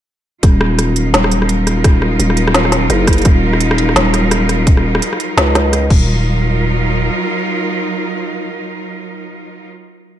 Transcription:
0.43 1.13 D#1 loud
0.43 5.86 F#3 medium
0.43 5.86 D#4 medium
0.43 5.86 F4 medium
0.43 5.86 A#4 medium
0.43 kick loud
0.43 cross-stick medium
0.43 closed hi-hat medium
0.61 cross-stick medium
0.79 cross-stick medium
0.79 closed hi-hat medium
0.96 closed hi-hat medium
1.14 2.19 D#1 medium
1.14 snare loud
1.14 closed hi-hat medium
1.24 cross-stick medium
1.32 closed hi-hat medium
1.42 cross-stick medium
1.49 closed hi-hat medium
1.67 cross-stick medium
1.67 closed hi-hat medium
1.84 kick loud
1.84 cross-stick medium
1.84 closed hi-hat medium
2.02 cross-stick medium
2.20 2.89 D#1 loud
2.20 closed hi-hat medium
2.30 cross-stick medium
2.37 closed hi-hat medium
2.47 cross-stick medium
2.54 snare loud
2.54 closed hi-hat medium
2.65 cross-stick medium
2.72 snare medium
2.72 closed hi-hat medium
2.90 3.24 F#1 loud
2.90 cross-stick medium
2.90 closed hi-hat medium
3.07 kick medium
3.07 cross-stick medium
3.07 closed hi-hat medium
3.13 closed hi-hat medium
3.18 closed hi-hat soft
3.22 cross-stick medium
3.22 closed hi-hat soft
3.25 3.95 D#1 loud
3.25 kick loud
3.25 closed hi-hat medium
3.53 cross-stick medium
3.61 closed hi-hat medium
3.71 cross-stick medium
3.78 closed hi-hat medium
3.89 cross-stick medium
3.96 5.01 D#1 loud
3.96 snare loud
3.96 closed hi-hat medium
4.14 cross-stick medium
4.14 closed hi-hat medium
4.31 cross-stick medium
4.31 closed hi-hat medium
4.49 cross-stick medium
4.49 closed hi-hat medium
4.67 kick loud
4.67 closed hi-hat medium
4.77 cross-stick soft
4.95 cross-stick medium
5.02 closed hi-hat medium
5.13 cross-stick soft
5.20 closed hi-hat medium
5.37 5.89 C#2 loud
5.37 cross-stick medium
5.37 snare loud
5.37 closed hi-hat medium
5.55 cross-stick medium
5.55 snare medium
5.55 closed hi-hat medium
5.73 cross-stick medium
5.73 closed hi-hat medium
5.90 7.10 D#1 medium
5.90 9.66 F#3 medium
5.90 9.66 D#4 medium
5.90 9.66 F4 medium
5.90 9.66 A#4 medium
5.90 kick loud
5.90 crash medium

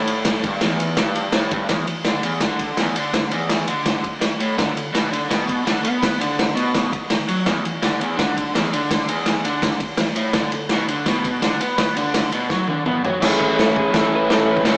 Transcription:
0.00 0.25 A2 loud
0.07 ride medium
0.25 0.43 A2 medium
0.25 kick loud
0.25 snare loud
0.25 ride loud
0.44 0.61 G2 medium
0.44 kick loud
0.44 ride medium
0.61 0.98 E2 loud
0.61 snare loud
0.61 ride medium
0.80 ride medium
0.97 1.34 G2 loud
0.97 kick loud
0.97 snare loud
0.97 ride medium
1.15 ride medium
1.32 1.51 A2 loud
1.32 snare loud
1.32 ride medium
1.51 1.69 G2 loud
1.51 kick loud
1.51 ride medium
1.69 1.86 E2 medium
1.69 kick loud
1.69 snare loud
1.69 ride medium
1.87 2.02 E2 medium
1.87 ride medium
2.05 2.23 D3 loud
2.05 snare loud
2.05 ride medium
2.23 2.41 E2 loud
2.23 ride medium
2.41 2.77 D3 loud
2.41 kick loud
2.41 snare loud
2.41 ride loud
2.59 kick medium
2.59 ride medium
2.77 2.95 E2 loud
2.77 snare loud
2.77 ride medium
2.96 3.32 D3 loud
2.96 ride medium
3.14 kick loud
3.14 snare loud
3.14 ride medium
3.31 3.68 E2 medium
3.31 ride medium
3.49 snare loud
3.49 ride medium
3.68 4.04 D3 medium
3.68 ride medium
3.86 kick loud
3.86 snare loud
3.86 ride medium
4.04 muted overdriven electric guitar stroke medium
4.04 kick medium
4.04 ride medium
4.20 4.36 E2 medium
4.20 snare loud
4.20 ride medium
4.40 4.57 A2 loud
4.40 ride medium
4.58 4.74 D3 medium
4.58 kick loud
4.58 snare loud
4.58 ride medium
4.75 4.90 D3 medium
4.75 ride medium
4.93 5.11 B2 loud
4.93 snare loud
4.93 ride medium
5.12 5.29 D3 medium
5.12 ride medium
5.29 5.65 B2 loud
5.29 kick loud
5.29 snare loud
5.29 ride loud
5.49 kick medium
5.49 ride medium
5.66 5.83 D3 loud
5.66 snare loud
5.66 ride medium
5.83 6.19 B3 medium
5.83 ride medium
6.03 kick loud
6.03 snare loud
6.03 ride loud
6.20 6.55 D3 medium
6.20 ride medium
6.39 snare loud
6.39 ride medium
6.55 6.91 B2 medium
6.55 ride medium
6.74 kick loud
6.74 snare loud
6.74 ride medium
6.92 muted overdriven electric guitar stroke medium
6.92 kick medium
6.92 ride medium
7.10 7.25 D3 medium
7.10 snare loud
7.10 ride medium
7.28 7.46 F#3 loud
7.28 ride medium
7.46 7.64 E2 medium
7.46 kick loud
7.46 snare loud
7.46 ride medium
7.65 7.80 E2 medium
7.65 ride medium
7.83 8.00 D3 loud
7.83 snare loud
7.83 ride medium
7.99 8.18 E2 loud
7.99 ride medium
8.17 8.53 D3 loud
8.17 kick loud
8.17 snare loud
8.17 ride loud
8.37 kick medium
8.37 ride medium
8.54 8.72 E2 loud
8.54 snare loud
8.54 ride medium
8.73 9.08 D3 loud
8.73 ride medium
8.91 kick loud
8.91 snare loud
8.91 ride loud
9.08 9.44 E2 medium
9.08 ride medium
9.26 snare loud
9.26 ride medium
9.44 9.80 D3 loud
9.44 ride medium
9.62 kick loud
9.62 snare loud
9.62 ride loud
9.80 muted overdriven electric guitar stroke medium
9.80 kick medium
9.80 ride medium
9.97 10.13 E2 medium
9.97 snare loud
9.97 ride medium
10.16 10.34 A2 loud
10.16 ride medium
10.33 10.52 D3 medium
10.33 kick loud
10.33 snare loud
10.33 ride medium
10.52 10.67 D3 medium
10.52 ride medium
10.69 10.88 B2 loud
10.69 snare loud
10.69 ride medium
10.88 11.06 D3 loud
10.88 ride medium
11.06 11.42 B2 loud
11.06 kick loud
11.06 snare loud
11.06 ride medium
11.24 kick medium
11.24 ride medium
11.42 11.60 D3 loud
11.42 snare loud
11.42 ride medium
11.61 11.96 B3 loud
11.61 ride medium
11.78 kick loud
11.78 snare loud
11.78 ride medium
11.96 12.32 D3 loud
11.96 ride medium
12.14 snare loud
12.14 ride loud
12.32 12.50 B2 loud
12.32 ride medium
12.49 12.68 F#3 loud
12.49 kick loud
12.49 snare medium
12.68 12.85 D3 medium
12.68 high tom medium
12.86 13.04 B2 loud
12.86 mid tom medium
13.04 13.20 F#3 loud
13.04 floor tom medium
13.20 13.91 A2 medium
13.20 13.93 E3 medium
13.20 13.94 A3 medium
13.20 13.95 C#4 loud
13.20 13.57 G#4 medium
13.20 kick loud
13.20 snare loud
13.20 crash loud
13.20 crash medium
13.25 13.96 E4 medium
13.41 kick loud
13.59 13.77 A4 medium
13.59 snare loud
13.59 crash medium
13.76 13.95 G#4 medium
13.76 kick medium
13.92 14.62 A2 medium
13.92 14.65 E3 medium
13.92 14.65 A3 medium
13.92 kick loud
13.92 snare loud
13.92 crash medium
13.96 14.65 C#4 medium
13.96 14.69 E4 loud
13.96 14.13 A4 medium
14.15 14.31 B4 medium
14.30 14.49 A4 medium
14.30 snare loud
14.30 crash medium
14.51 14.67 B4 medium
14.57 kick medium
14.63 14.77 A2 loud
14.63 14.77 E3 medium
14.63 14.77 A3 medium
14.63 kick loud
14.63 snare loud
14.63 crash medium
14.68 14.77 C#4 medium
14.68 14.77 E4 loud
14.68 14.77 C#5 medium

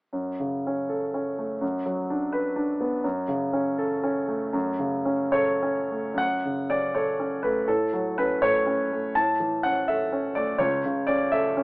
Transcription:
0.13 1.58 F#2 soft
0.40 0.79 C#3 soft
0.67 1.05 C#4 soft
0.89 1.29 A4 soft
1.14 1.53 C#4 soft
1.38 1.62 A3 soft
1.61 2.99 F#2 soft
1.86 2.23 F#3 soft
2.10 2.47 D4 soft
2.33 2.70 B4 soft
2.56 2.94 D4 soft
2.80 3.04 B3 soft
3.04 4.51 F#2 soft
3.28 3.69 C#3 soft
3.53 3.94 C#4 soft
3.78 4.19 A4 soft
4.03 4.44 C#4 soft
4.28 4.69 A3 soft
4.53 6.13 F#2 soft
4.79 5.22 C#3 soft
5.05 5.50 C#4 soft
5.32 5.79 A4 soft
5.32 6.18 C#5 medium
5.63 6.09 C#4 soft
5.91 6.19 A3 soft
6.14 7.61 F#2 soft
6.14 6.70 F#5 medium
6.45 6.85 C#3 soft
6.70 7.09 C#4 soft
6.70 6.94 D5 medium
6.95 7.33 A4 soft
6.95 7.43 C#5 soft
7.19 7.58 C#4 soft
7.43 7.68 A3 soft
7.43 7.67 B4 soft
7.68 9.12 A2 soft
7.68 8.18 A4 soft
7.93 8.33 F#3 soft
8.18 8.57 C#4 soft
8.18 8.42 B4 soft
8.42 8.82 A3 soft
8.42 9.16 C#5 medium
8.66 9.06 C#4 soft
8.92 9.16 A3 soft
9.15 10.57 A2 soft
9.15 9.64 A5 medium
9.40 9.79 E3 soft
9.63 10.03 C#4 soft
9.63 9.88 F#5 medium
9.88 10.27 A4 soft
9.88 10.36 E5 medium
10.12 10.51 C#4 soft
10.35 10.60 A3 soft
10.35 10.60 D5 soft
10.58 11.63 C#2 soft
10.58 11.07 C#5 medium
10.85 11.23 C#3 soft
11.07 11.46 C#4 soft
11.07 11.32 D5 medium
11.32 11.63 A4 soft
11.32 11.56 E5 medium
11.57 11.63 C#4 soft

